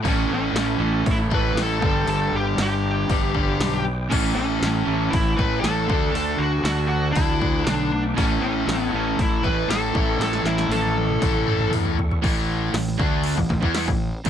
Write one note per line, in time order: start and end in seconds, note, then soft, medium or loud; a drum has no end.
0.00 1.29 A2 medium
0.00 1.79 A4 medium
0.00 1.80 E5 medium
0.04 0.28 A1 loud
0.04 1.30 E3 medium
0.04 1.29 A3 loud
0.04 0.32 C#4 loud
0.04 1.80 C#6 medium
0.04 kick loud
0.04 open hi-hat medium
0.29 0.52 A1 medium
0.34 1.04 C#4 medium
0.53 0.77 A1 loud
0.53 snare loud
0.53 open hi-hat medium
0.78 1.03 A1 medium
0.78 1.81 E3 medium
0.78 1.80 A3 medium
0.82 1.81 A2 medium
1.06 1.30 A1 loud
1.06 kick loud
1.06 open hi-hat medium
1.11 1.17 E4 loud
1.30 1.54 A1 loud
1.30 1.55 A2 medium
1.30 1.56 E3 medium
1.30 1.55 A3 medium
1.30 kick medium
1.35 1.59 B4 loud
1.55 1.79 A1 loud
1.55 1.80 A2 medium
1.55 1.81 E3 medium
1.55 1.81 A3 medium
1.55 snare loud
1.55 open hi-hat medium
1.63 1.85 A4 medium
1.80 2.06 G1 medium
1.80 3.07 G2 medium
1.80 3.08 D3 medium
1.80 3.08 G3 medium
1.80 4.08 B4 medium
1.80 4.08 G5 medium
1.80 4.08 D6 medium
1.80 kick loud
1.86 2.09 A4 loud
2.06 2.30 G1 loud
2.06 2.35 A4 medium
2.06 open hi-hat medium
2.32 2.56 G1 medium
2.32 2.60 G4 medium
2.56 3.05 G1 loud
2.56 3.83 G2 medium
2.56 3.84 D3 medium
2.56 3.85 G3 medium
2.56 snare loud
2.56 open hi-hat medium
2.62 3.84 G4 medium
3.09 3.56 G1 loud
3.09 3.33 G2 medium
3.09 3.34 D3 medium
3.09 3.33 G3 medium
3.09 kick loud
3.09 open hi-hat medium
3.34 3.85 G2 medium
3.34 3.84 D3 medium
3.34 3.84 G3 medium
3.34 kick medium
3.59 4.07 B1 medium
3.59 snare loud
3.59 open hi-hat medium
4.10 4.35 A1 medium
4.10 5.36 A2 medium
4.10 5.37 E3 loud
4.10 5.37 A3 medium
4.10 4.34 C#4 loud
4.10 12.19 A4 medium
4.10 5.87 E5 medium
4.10 5.87 C#6 medium
4.10 kick loud
4.10 crash loud
4.36 4.60 A1 medium
4.36 5.15 C#4 medium
4.62 4.85 A1 loud
4.62 snare loud
4.62 open hi-hat medium
4.85 5.10 A1 medium
4.85 5.87 A2 medium
4.85 5.87 E3 medium
4.85 5.91 A3 medium
5.10 5.36 A1 medium
5.10 5.38 E4 loud
5.10 kick loud
5.10 open hi-hat medium
5.37 5.62 A1 medium
5.37 5.61 A2 medium
5.37 5.62 E3 medium
5.37 5.65 A3 loud
5.37 5.60 B4 loud
5.37 kick medium
5.37 snare soft
5.61 5.87 A1 medium
5.61 5.87 A2 medium
5.61 5.88 E3 medium
5.61 6.15 A4 loud
5.61 snare loud
5.61 open hi-hat medium
5.65 5.89 A3 medium
5.87 6.13 D2 medium
5.87 7.13 D3 medium
5.87 7.16 A3 medium
5.87 7.15 D4 medium
5.87 8.16 F#5 medium
5.87 8.15 D6 medium
5.87 kick loud
6.14 6.38 D2 loud
6.14 6.41 A4 loud
6.14 open hi-hat medium
6.38 6.63 D2 medium
6.38 6.64 F#4 medium
6.63 7.11 D2 loud
6.63 7.90 D3 medium
6.63 8.16 A3 medium
6.63 7.91 D4 loud
6.63 6.87 F#4 loud
6.63 snare loud
6.63 open hi-hat medium
6.88 7.12 F#4 loud
7.12 7.63 D2 medium
7.12 7.39 D3 medium
7.12 7.41 A3 medium
7.12 7.67 E4 loud
7.12 open hi-hat medium
7.16 7.38 D4 medium
7.16 kick loud
7.40 7.91 D3 medium
7.40 8.18 A3 medium
7.40 7.90 D4 loud
7.40 kick medium
7.64 8.13 B1 loud
7.64 8.01 D4 medium
7.64 snare loud
7.64 open hi-hat medium
8.16 8.41 A1 loud
8.16 9.45 A2 loud
8.16 9.45 E3 loud
8.16 9.43 A3 loud
8.16 8.41 C#4 loud
8.16 12.19 E5 medium
8.16 12.19 C#6 medium
8.16 kick loud
8.16 open hi-hat medium
8.41 8.66 A1 medium
8.41 8.90 C#4 medium
8.67 8.91 A1 loud
8.67 snare loud
8.67 open hi-hat medium
8.90 9.17 A1 medium
8.90 9.92 A2 medium
8.90 9.93 E3 medium
8.90 9.95 A3 loud
8.96 9.21 C#4 medium
9.19 9.43 A1 medium
9.19 9.43 E4 medium
9.19 kick loud
9.19 open hi-hat medium
9.43 9.67 A1 loud
9.43 9.68 A2 medium
9.43 9.70 E3 medium
9.43 9.71 A3 loud
9.43 9.70 B4 loud
9.43 kick medium
9.43 snare soft
9.68 9.92 A1 loud
9.68 9.93 A2 medium
9.68 9.94 E3 medium
9.68 9.96 A3 loud
9.68 10.21 A4 medium
9.68 snare loud
9.68 open hi-hat medium
9.94 10.18 A1 medium
9.94 11.19 A2 medium
9.94 11.21 E3 medium
9.94 11.21 A3 loud
9.94 kick loud
10.19 10.43 A1 loud
10.19 10.45 A4 loud
10.19 snare medium
10.19 open hi-hat medium
10.33 snare medium
10.43 10.68 A1 medium
10.43 10.73 E4 medium
10.43 snare medium
10.58 snare medium
10.69 11.17 A1 loud
10.69 11.96 A2 medium
10.69 11.96 E3 medium
10.69 11.97 A3 loud
10.69 11.69 A4 medium
10.69 open hi-hat medium
10.69 high tom medium
10.83 high tom medium
10.96 high tom medium
11.09 mid tom medium
11.20 11.69 A1 medium
11.20 11.45 A2 medium
11.20 11.46 E3 medium
11.20 11.45 A3 medium
11.20 kick loud
11.20 open hi-hat medium
11.20 mid tom loud
11.35 mid tom medium
11.47 11.97 A2 medium
11.47 11.97 E3 medium
11.47 11.96 A3 medium
11.47 mid tom loud
11.59 mid tom medium
11.71 12.19 E2 medium
11.71 mid tom loud
11.71 open hi-hat medium
11.85 floor tom medium
11.99 floor tom loud
12.11 floor tom medium
12.23 12.71 A1 loud
12.23 12.73 A2 medium
12.23 12.73 E3 medium
12.23 12.73 A3 loud
12.23 kick loud
12.23 crash medium
12.73 12.97 A1 medium
12.73 12.95 A2 medium
12.73 12.95 E3 medium
12.73 snare loud
12.73 crash medium
12.88 snare soft
12.99 13.35 D2 medium
12.99 13.37 D3 loud
12.99 13.37 A3 loud
12.99 13.37 D4 loud
12.99 kick loud
13.24 crash medium
13.37 13.49 A1 medium
13.37 13.49 A2 medium
13.37 13.49 E3 medium
13.37 kick medium
13.49 13.61 A1 medium
13.49 13.63 A2 medium
13.49 13.62 E3 medium
13.49 kick medium
13.62 13.86 E2 loud
13.62 13.88 E3 medium
13.62 13.88 B3 medium
13.62 13.88 E4 loud
13.62 kick medium
13.75 snare loud
13.75 crash medium
13.88 14.11 A1 medium
13.88 14.09 A2 medium
13.88 14.09 E3 medium
13.88 kick loud
14.25 14.30 A1 loud
14.25 14.30 A2 medium
14.25 14.30 E3 medium
14.25 14.30 A3 loud
14.25 kick loud
14.25 crash medium